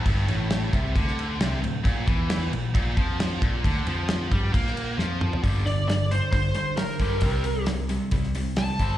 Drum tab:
CC |x-x-x-x-x-x-x-x-|x-x-x-x-x-x-x-x-|x-x-x-x-x-x-----|----------------|
HH |----------------|----------------|----------------|o-o-o-o-o-o-o-o-|
SD |----o----o--o---|----o-------o---|----o----o--o---|----o-------o---|
T2 |----------------|----------------|--------------o-|----------------|
FT |----------------|----------------|---------------o|----------------|
BD |o-----o-o-------|o-o-----o-o---o-|o-----o-o-------|o-------o-----o-|

CC |----------------|
HH |o-o-o-o-o-o-o-o-|
SD |----o----o--o---|
T2 |----------------|
FT |----------------|
BD |o-------o-----o-|